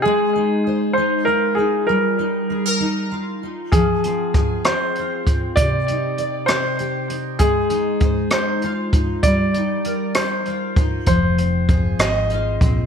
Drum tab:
HH |------|------|xxxxxx|xxxxxx|
SD |------|------|---r--|---r--|
BD |------|------|o-o--o|o-----|

HH |xxxxxx|xxxxxx|xxxxxx|
SD |---r--|---r--|---r--|
BD |o-o--o|o----o|o-o--o|